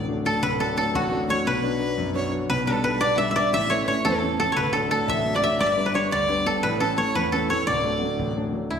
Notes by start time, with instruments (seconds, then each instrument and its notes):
Already playing: grand piano D1 A1, koto A4 B4 D5
0.08 grand piano F#3 A3 D4
0.25 grand piano F#3 A3 D4, bouzouki A4, fiddle A4, koto A4
0.42 grand piano D1 D2, fiddle B4, koto B4, bouzouki B4
0.60 grand piano F#3 A3 D4, fiddle A4, koto A4, bouzouki A4
0.77 grand piano F#3 A3 D4, bouzouki A4, koto A4, fiddle A4
0.95 grand piano A1, bouzouki F#4, koto F#4, fiddle F#4
1.12 grand piano F#3 A3 D4
1.29 grand piano F#3 A3 D4, bouzouki C#5, fiddle C#5, koto C#5
1.46 grand piano B1 B2, bouzouki B4, koto B4, fiddle B4
1.63 grand piano F#3 B3 D4
1.80 grand piano F#3 B3 D4
1.98 grand piano F#2
2.14 grand piano F#3 B3 D4, bouzouki C#5, fiddle C#5
2.32 grand piano F#3 B3 D4
2.50 grand piano B1 B2, koto B4, bouzouki B4, fiddle B4
2.66 grand piano G3 B3 D4, koto A4, fiddle A4, bouzouki A4
2.83 grand piano G3 B3 D4, koto B4, fiddle B4
3.01 grand piano B2, koto D5, bouzouki D5, fiddle D5
3.15 grand piano G3 B3 D4, koto E5, bouzouki E5, fiddle F#5
3.19 fiddle E5
3.31 koto E5
3.36 grand piano G3 B3 D4, koto D5, bouzouki D5, fiddle D5
3.53 grand piano A1 A2, bouzouki E5, fiddle E5, koto E5
3.70 grand piano E3 A3 C#4, koto C#5, bouzouki C#5, fiddle C#5
3.84 grand piano E3 A3, fiddle B4 C#5, koto C#5, bouzouki C#5
3.88 grand piano C#4
4.05 grand piano E2, koto A4, fiddle A4, bouzouki A4
4.22 grand piano E3 A3 C#4
4.39 grand piano E3 A3 C#4, fiddle A4, koto A4, bouzouki A4
4.52 koto C#5
4.56 grand piano D1 D2, koto B4, fiddle B4, bouzouki B4
4.73 grand piano F#3 A3 D4, koto A4, fiddle A4, bouzouki A4
4.91 grand piano F#3 A3 D4, fiddle A4, koto A4, bouzouki A4
5.08 grand piano A1, bouzouki E5, fiddle E5, koto E5
5.25 grand piano F#3 A3 D4
5.34 bouzouki D5, fiddle D5, koto D5
5.42 grand piano F#3 A3 D4, bouzouki E5, koto E5, fiddle E5
5.59 grand piano G1 G2, bouzouki D5, fiddle D5, koto D5
5.67 fiddle E5
5.73 grand piano G3, fiddle D5
5.77 grand piano B3 D4
5.86 bouzouki B4, koto B4, fiddle B4
5.94 grand piano G3 B3 D4, bouzouki C#5, fiddle C#5, koto C#5
6.11 grand piano D2, bouzouki D5, fiddle D5, koto D5
6.29 grand piano G3 B3 D4, bouzouki B4
6.46 grand piano G3 B3 D4, koto A4, bouzouki A4, fiddle A4
6.63 grand piano A1 A2, bouzouki B4, koto B4, fiddle B4
6.80 grand piano E3 A3 C#4, koto A4, bouzouki A4, fiddle A4
6.98 grand piano E3 A3 C#4, koto C#5, fiddle C#5
7.15 grand piano E2, bouzouki B4, koto B4, fiddle B4
7.32 grand piano E3 A3 C#4, koto A4, bouzouki A4, fiddle A4
7.50 grand piano E3 A3 C#4, koto C#5, fiddle C#5, bouzouki C#5
7.67 grand piano D1 D2, koto D5, bouzouki D5, fiddle D5
7.84 grand piano F#3 A3 D4
8.01 grand piano F#3 A3 D4
8.19 grand piano A1
8.36 grand piano F#3 A3 D4
8.53 grand piano F#3 A3 D4
8.70 string section D2, grand piano D2, koto E4